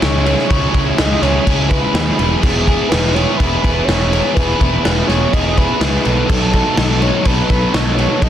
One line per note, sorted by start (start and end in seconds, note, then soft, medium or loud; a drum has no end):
0.00 0.34 C#2 medium
0.00 0.25 G#3 medium
0.00 0.25 C#4 medium
0.00 0.27 E4 loud
0.00 0.27 G#4 medium
0.00 0.48 C#5 loud
0.00 snare loud
0.00 crash medium
0.26 0.49 G#3 medium
0.26 0.49 C#4 medium
0.26 0.50 E4 medium
0.26 0.51 G#4 medium
0.26 crash medium
0.39 snare soft
0.49 0.67 C#2 medium
0.49 0.73 G#3 medium
0.49 0.73 C#4 loud
0.49 0.74 E4 loud
0.49 0.75 G#4 loud
0.49 0.99 C#5 loud
0.49 kick loud
0.49 crash medium
0.73 0.90 C#2 medium
0.73 0.97 G#3 medium
0.73 0.98 C#4 medium
0.73 0.99 E4 medium
0.73 1.00 G#4 medium
0.73 kick medium
0.73 crash medium
0.98 1.15 C#2 medium
0.98 1.21 G#3 loud
0.98 1.21 C#4 medium
0.98 1.22 E4 loud
0.98 1.23 G#4 loud
0.98 1.23 D#5 loud
0.98 snare loud
0.98 crash medium
1.22 1.38 C#2 loud
1.22 1.46 G#3 medium
1.22 1.45 C#4 medium
1.22 1.47 E4 loud
1.22 1.48 G#4 loud
1.22 1.71 C#5 medium
1.22 snare soft
1.22 crash medium
1.46 1.79 C#2 medium
1.46 1.69 G#3 medium
1.46 1.69 C#4 loud
1.46 1.71 E4 loud
1.46 1.71 G#4 loud
1.46 kick medium
1.46 crash medium
1.69 1.93 G#3 medium
1.69 1.93 C#4 medium
1.69 1.95 E4 medium
1.69 1.95 G#4 medium
1.69 2.41 B4 loud
1.69 kick medium
1.69 crash medium
1.94 2.10 D#2 medium
1.94 5.44 G#3 medium
1.94 2.18 C#4 medium
1.94 2.19 E4 medium
1.94 2.20 G#4 loud
1.94 snare loud
1.94 crash medium
2.19 2.35 E1 medium
2.19 2.42 B3 loud
2.19 2.42 E4 loud
2.19 2.43 G#4 loud
2.19 crash medium
2.42 2.75 E1 medium
2.42 2.67 B3 loud
2.42 2.68 E4 loud
2.42 2.90 G#4 loud
2.42 2.68 G#4 loud
2.42 kick loud
2.42 crash loud
2.67 2.91 B3 medium
2.67 2.92 E4 medium
2.67 2.92 G#4 medium
2.67 kick medium
2.67 crash medium
2.89 3.24 E1 medium
2.89 3.15 B3 medium
2.89 3.15 E4 medium
2.89 3.16 G#4 loud
2.89 3.15 B4 loud
2.89 snare loud
2.89 crash medium
3.14 3.40 B3 medium
3.14 3.40 E4 medium
3.14 3.41 G#4 medium
3.14 3.39 C#5 loud
3.14 crash medium
3.37 3.56 E1 medium
3.37 3.63 B3 loud
3.37 3.63 E4 loud
3.37 3.61 B4 loud
3.37 kick medium
3.37 crash medium
3.42 3.64 G#4 loud
3.61 3.80 E1 medium
3.61 3.88 B3 medium
3.61 3.88 E4 medium
3.61 3.89 G#4 loud
3.61 3.86 B4 medium
3.61 kick medium
3.61 crash medium
3.84 4.20 E1 loud
3.84 4.12 B3 medium
3.84 4.36 C#5 loud
3.89 4.11 E4 medium
3.89 4.12 G#4 medium
3.89 snare loud
3.89 crash medium
4.12 4.36 B3 medium
4.12 4.35 E4 loud
4.12 4.36 G#4 loud
4.12 crash medium
4.35 4.53 E1 loud
4.35 4.59 B3 medium
4.35 4.60 E4 loud
4.35 4.60 G#4 loud
4.35 4.84 B4 loud
4.35 kick loud
4.35 crash medium
4.60 4.77 E1 medium
4.60 4.84 B3 medium
4.60 4.84 E4 medium
4.60 4.85 G#4 medium
4.60 kick medium
4.60 crash medium
4.84 5.01 E1 medium
4.84 5.08 B3 medium
4.84 5.08 E4 loud
4.84 5.09 G#4 loud
4.84 5.07 B4 loud
4.84 snare loud
4.84 crash medium
5.08 5.25 E1 medium
5.08 5.32 B3 medium
5.08 5.32 E4 medium
5.08 5.33 G#4 medium
5.08 5.35 C#5 medium
5.08 snare soft
5.08 crash medium
5.33 5.65 E1 medium
5.33 5.56 B3 loud
5.33 5.56 E4 loud
5.33 5.57 G#4 loud
5.33 5.59 D#5 loud
5.33 kick medium
5.33 crash medium
5.56 5.80 B3 medium
5.56 5.79 E4 medium
5.56 5.80 G#4 loud
5.56 6.30 B4 loud
5.56 kick medium
5.56 crash medium
5.80 5.97 C#2 loud
5.80 6.05 B3 medium
5.80 6.04 E4 medium
5.80 6.04 G#4 loud
5.80 snare loud
5.80 crash medium
6.04 6.22 B1 medium
6.04 6.28 F#3 loud
6.04 6.29 B3 loud
6.04 6.29 D#4 loud
6.04 6.30 A4 loud
6.04 crash medium
6.28 6.62 B1 medium
6.28 6.52 F#3 loud
6.28 6.53 B3 loud
6.28 6.54 D#4 loud
6.28 7.03 A4 medium
6.28 6.54 A4 loud
6.28 kick loud
6.28 crash loud
6.53 6.77 F#3 loud
6.53 6.77 B3 medium
6.53 6.78 D#4 loud
6.53 6.79 A4 loud
6.53 kick medium
6.53 crash medium
6.77 7.10 B1 loud
6.77 7.01 F#3 loud
6.77 7.01 B3 medium
6.77 7.02 D#4 medium
6.77 7.03 A4 loud
6.77 snare loud
6.77 crash loud
7.01 7.24 F#3 medium
7.01 7.26 B3 medium
7.01 7.26 D#4 loud
7.01 7.26 A4 loud
7.01 7.27 C#5 medium
7.01 crash medium
7.25 7.42 B1 loud
7.25 7.48 F#3 loud
7.25 7.50 B3 loud
7.25 7.50 D#4 loud
7.25 7.50 A4 loud
7.25 7.50 B4 medium
7.25 kick medium
7.25 crash medium
7.49 7.66 B1 loud
7.49 7.72 F#3 medium
7.49 7.73 B3 medium
7.49 7.74 D#4 medium
7.49 7.74 A4 medium
7.49 7.75 B4 medium
7.49 kick medium
7.49 crash medium
7.73 8.06 B1 loud
7.73 7.97 F#3 medium
7.73 7.98 B3 medium
7.73 7.98 D#4 loud
7.73 7.99 A4 loud
7.73 8.24 C#5 loud
7.73 snare loud
7.73 crash medium
7.98 8.21 F#3 medium
7.98 8.22 B3 loud
7.98 8.22 D#4 medium
7.98 8.23 A4 medium
7.98 crash medium
8.22 8.29 B1 loud
8.22 8.29 F#3 medium
8.22 8.29 B3 loud
8.22 8.29 D#4 loud
8.22 8.29 A4 loud
8.22 8.29 D#5 loud
8.22 kick loud
8.22 crash medium